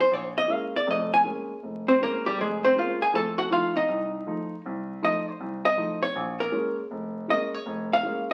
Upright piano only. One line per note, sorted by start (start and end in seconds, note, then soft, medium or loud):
0.11 0.44 A#1 medium
0.48 0.74 G#3 medium
0.48 0.75 A#3 soft
0.48 0.75 C#4 medium
0.87 1.19 F1 medium
0.87 1.20 F2 medium
1.24 1.50 G#3 medium
1.24 1.51 A#3 soft
1.24 1.51 C#4 medium
1.63 1.95 F1 medium
2.01 2.26 G#3 medium
2.01 2.27 A#3 soft
2.01 2.27 C#4 medium
2.38 2.70 F1 medium
2.76 3.01 G#3 medium
2.76 3.02 A#3 medium
2.76 3.02 C#4 medium
3.13 3.46 F2 medium
3.13 3.46 A3 medium
3.50 3.76 F3 medium
3.50 3.77 A3 medium
3.50 3.77 D#4 medium
3.88 4.21 C2 medium
4.26 4.52 F3 medium
4.26 4.53 A3 medium
4.26 4.53 D#4 medium
4.66 4.98 C2 medium
5.02 5.28 F3 medium
5.02 5.28 A3 medium
5.02 5.28 D#4 medium
5.40 5.72 C2 medium
5.77 6.03 F3 medium
5.77 6.03 A3 medium
5.77 6.03 D#4 medium
6.15 6.48 A#1 medium
6.52 6.78 G#3 medium
6.52 6.78 A#3 medium
6.52 6.78 C#4 medium
6.91 7.23 F1 medium
7.28 7.54 G#3 medium
7.28 7.54 A#3 medium
7.28 7.54 C#4 medium
7.66 7.98 F1 medium
8.03 8.29 G#3 medium
8.03 8.30 A#3 medium
8.03 8.30 C#4 medium